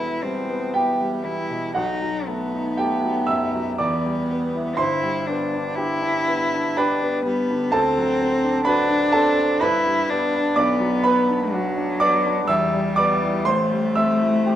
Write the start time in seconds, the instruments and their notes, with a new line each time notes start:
Already playing: grand piano E1 E2 E3 G3 B3 E4 A4 A5, cello E4
0.24 grand piano G3, cello C4
0.49 grand piano B3
0.74 cello B3, grand piano E4 G4 G5
1.01 grand piano G3
1.24 grand piano E3, cello E4
1.50 grand piano B2
1.74 grand piano B1 F#4 F#5, cello D#4
2.02 grand piano F#3
2.27 grand piano A3, cello B3
2.55 grand piano D#4
2.77 grand piano A3 G4 G5
3.04 grand piano F#3
3.27 grand piano F#2 E5 E6
3.55 grand piano F#3
3.78 grand piano E2 D5 D6, cello B3
4.06 grand piano G3
4.31 grand piano B3
4.55 grand piano E4
4.76 grand piano G1 G2 C5 C6, cello E4
5.03 grand piano G3
5.26 grand piano B3, cello D4
5.53 grand piano D4
5.75 cello E4, grand piano G4
6.02 grand piano D4
6.28 grand piano B3
6.54 grand piano D4
6.77 cello D4, grand piano G4 B4 B5
7.02 grand piano B3
7.25 grand piano G3, cello B3
7.51 grand piano D3
7.71 grand piano D2 A4 A5, cello C4
7.97 grand piano F#3
8.22 grand piano C4
8.44 grand piano D4
8.65 cello D4, grand piano F#4 B4 B5
8.90 grand piano D4
9.12 grand piano C4 A4 A5
9.40 grand piano D4
9.61 grand piano G2 B4 B5, cello E4
9.87 grand piano G3
10.10 grand piano B3, cello D4
10.35 grand piano D4
10.56 grand piano B1 D5 D6, cello B3
10.80 grand piano F#3
11.04 grand piano B3 B4 B5
11.28 grand piano D4
11.52 cello F#3, grand piano F#4
11.77 grand piano D4
12.00 grand piano B3 D5 D6
12.26 grand piano D4
12.46 grand piano E2 E5 E6, cello G3
12.74 grand piano G3
12.96 grand piano B3 D5 D6
13.23 grand piano E4
13.44 grand piano A1 C5 C6, cello A3
13.71 grand piano G3
13.96 grand piano C4 E5 E6
14.21 grand piano E4
14.46 grand piano G4